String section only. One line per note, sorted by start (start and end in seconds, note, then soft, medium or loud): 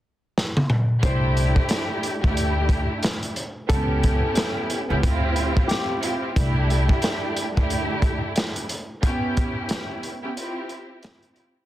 1.02 2.12 A3 loud
1.02 2.12 D4 loud
1.02 2.12 E4 loud
1.02 2.12 G4 loud
2.23 3.29 A3 loud
2.23 3.29 D4 medium
2.23 3.29 E4 loud
2.23 3.30 G4 loud
3.69 4.78 B3 loud
3.69 4.79 C#4 loud
3.69 4.79 E4 medium
3.69 4.79 G4 loud
4.89 5.02 B3 medium
4.89 5.03 C#4 medium
4.89 5.02 E4 medium
4.89 5.03 G4 loud
5.03 5.97 C4 loud
5.03 5.97 E4 loud
5.03 5.97 F4 loud
5.03 5.97 G4 loud
6.01 6.33 C4 medium
6.01 6.34 E4 medium
6.01 6.34 F4 medium
6.01 6.34 G4 medium
6.36 7.45 A3 loud
6.36 7.45 D4 loud
6.36 7.46 E4 loud
6.36 7.46 G4 loud
7.56 8.62 A3 loud
7.56 8.62 D4 medium
7.56 8.62 E4 loud
7.56 8.63 G4 loud
9.03 10.12 B3 loud
9.03 10.12 C#4 loud
9.03 10.12 E4 medium
9.03 10.13 G4 loud
10.23 10.36 B3 medium
10.23 10.36 C#4 medium
10.23 10.35 E4 medium
10.23 10.36 G4 loud
10.36 11.30 C4 loud
10.36 11.30 E4 loud
10.36 11.30 F4 loud
10.36 11.31 G4 loud
11.35 11.65 C4 medium
11.35 11.65 E4 medium
11.35 11.65 F4 medium
11.35 11.65 G4 medium